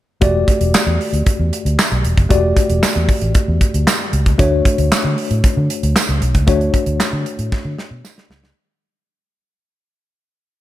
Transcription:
0.21 0.42 E1 loud
0.21 2.26 A3 medium
0.21 2.26 F#4 medium
0.21 2.27 G4 medium
0.21 2.27 D5 medium
0.21 kick loud
0.21 closed hi-hat medium
0.48 kick medium
0.48 closed hi-hat medium
0.61 0.71 E1 medium
0.61 closed hi-hat medium
0.74 snare loud
0.74 clap medium
0.74 tambourine medium
0.87 0.97 E2 medium
1.01 open hi-hat medium
1.13 1.23 D2 medium
1.13 closed hi-hat medium
1.26 kick loud
1.26 closed hi-hat medium
1.39 1.50 E2 loud
1.53 closed hi-hat medium
1.65 1.76 D2 medium
1.65 closed hi-hat medium
1.79 snare loud
1.79 clap medium
1.79 tambourine medium
1.92 2.02 B1 medium
1.92 closed hi-hat soft
2.05 2.15 E1 medium
2.05 closed hi-hat medium
2.17 2.28 F#1 loud
2.17 kick medium
2.17 closed hi-hat soft
2.29 2.51 E1 loud
2.29 4.35 A3 medium
2.29 4.35 F#4 medium
2.29 4.35 G4 medium
2.29 4.35 D5 medium
2.29 kick loud
2.29 closed hi-hat medium
2.57 kick medium
2.57 closed hi-hat medium
2.69 2.80 E1 medium
2.69 closed hi-hat medium
2.83 snare loud
2.83 clap medium
2.83 tambourine medium
2.95 3.06 E2 medium
2.95 closed hi-hat soft
3.09 kick medium
3.09 open hi-hat medium
3.21 3.32 A1 medium
3.21 closed hi-hat medium
3.35 kick loud
3.35 closed hi-hat medium
3.48 3.58 E2 medium
3.61 kick medium
3.61 closed hi-hat medium
3.74 3.84 D2 medium
3.74 closed hi-hat medium
3.87 snare loud
3.87 clap medium
3.87 tambourine medium
4.13 4.34 C#2 medium
4.13 closed hi-hat medium
4.26 kick medium
4.26 closed hi-hat medium
4.38 4.60 D2 loud
4.38 6.43 A3 medium
4.38 6.44 D4 medium
4.38 6.44 F#4 medium
4.38 6.44 C#5 medium
4.38 kick loud
4.38 closed hi-hat medium
4.65 kick medium
4.65 closed hi-hat medium
4.78 4.89 D2 loud
4.78 closed hi-hat medium
4.92 snare loud
4.92 clap medium
4.92 tambourine medium
5.04 5.15 D3 medium
5.18 open hi-hat medium
5.31 5.41 A2 medium
5.31 closed hi-hat medium
5.44 kick loud
5.44 closed hi-hat medium
5.57 5.67 D3 loud
5.70 closed hi-hat medium
5.83 5.93 D2 medium
5.83 closed hi-hat medium
5.96 snare loud
5.96 clap medium
5.96 tambourine medium
6.09 6.19 C#2 medium
6.09 closed hi-hat soft
6.22 6.32 B1 medium
6.22 closed hi-hat medium
6.35 6.45 C#2 medium
6.35 kick medium
6.35 closed hi-hat soft
6.47 6.68 D2 loud
6.47 8.52 A3 medium
6.47 8.52 D4 medium
6.47 8.53 F#4 medium
6.47 8.53 C#5 medium
6.47 kick loud
6.47 closed hi-hat medium
6.61 closed hi-hat soft
6.74 kick medium
6.74 closed hi-hat medium
6.86 6.97 D2 medium
6.86 closed hi-hat soft
7.00 muted fingered electric bass stroke soft
7.00 snare loud
7.00 clap medium
7.00 tambourine medium
7.13 7.23 D3 medium
7.26 closed hi-hat medium
7.39 7.49 A2 medium
7.39 closed hi-hat medium
7.52 kick loud
7.52 snare medium
7.65 7.75 D3 medium
7.79 snare medium
7.91 8.01 B2 medium
8.05 snare medium
8.05 tambourine medium
8.18 snare medium
8.30 8.51 C#2 medium
8.30 snare medium
8.44 snare medium

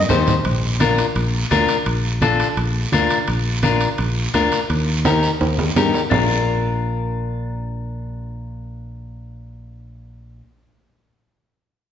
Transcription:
0.09 0.38 D#2 medium
0.09 0.34 D#4 medium
0.09 0.34 G4 medium
0.09 0.35 C5 medium
0.09 low conga medium
0.09 low timbale medium
0.09 short guiro medium
0.27 low conga medium
0.27 short guiro medium
0.45 1.01 A#1 medium
0.45 high timbale medium
0.45 long guiro medium
0.80 1.05 D4 medium
0.80 1.05 F4 medium
0.80 1.06 A#4 medium
0.80 high conga medium
0.80 high timbale medium
0.80 short guiro medium
0.98 high timbale medium
0.98 short guiro medium
1.16 1.44 A#1 medium
1.16 high timbale medium
1.16 long guiro medium
1.51 1.65 D2 medium
1.51 1.76 D4 medium
1.51 1.76 F4 medium
1.51 1.76 A#4 medium
1.51 high conga medium
1.51 high timbale medium
1.51 short guiro medium
1.69 high timbale medium
1.69 short guiro medium
1.86 2.43 A#1 medium
1.86 high timbale medium
1.86 long guiro medium
2.22 2.47 D4 medium
2.22 2.47 F4 medium
2.22 2.47 A4 medium
2.22 high conga medium
2.22 high timbale medium
2.22 short guiro medium
2.40 high timbale medium
2.40 short guiro medium
2.57 2.86 A#1 medium
2.57 high timbale medium
2.57 long guiro medium
2.92 3.07 D2 medium
2.92 3.18 D4 medium
2.92 3.18 F4 medium
2.92 3.18 A#4 medium
2.92 high conga medium
2.92 high timbale medium
2.92 short guiro medium
3.10 high timbale medium
3.10 short guiro medium
3.28 3.85 A#1 medium
3.28 high timbale medium
3.28 long guiro medium
3.63 3.88 D4 medium
3.63 3.88 F4 medium
3.63 3.89 A#4 medium
3.63 high conga medium
3.63 high timbale medium
3.63 short guiro medium
3.81 high timbale medium
3.81 short guiro medium
3.98 4.27 A#1 medium
3.98 high timbale medium
3.98 long guiro medium
4.34 4.49 D2 medium
4.34 4.59 D4 medium
4.34 4.59 F4 medium
4.34 4.60 A#4 medium
4.34 high conga medium
4.34 high timbale medium
4.34 short guiro medium
4.52 high timbale medium
4.52 short guiro medium
4.70 5.27 D#2 medium
4.70 high timbale medium
4.70 long guiro medium
5.05 5.30 D#4 medium
5.05 5.30 G4 medium
5.05 5.31 A#4 medium
5.05 high conga medium
5.05 high timbale medium
5.05 short guiro medium
5.23 short guiro medium
5.41 5.69 D#2 medium
5.41 high timbale medium
5.41 long guiro medium
5.58 high conga medium
5.58 low timbale medium
5.76 5.91 G2 medium
5.76 6.01 D#4 medium
5.76 6.01 G4 medium
5.76 6.01 A#4 medium
5.76 high conga medium
5.76 low timbale medium
5.76 short guiro medium
5.94 low timbale medium
5.94 short guiro medium
6.10 10.41 A#1 medium
6.10 10.40 D4 medium
6.10 10.41 F4 medium
6.10 low conga medium
6.10 low timbale medium
6.10 long guiro medium
6.14 10.42 A#4 medium

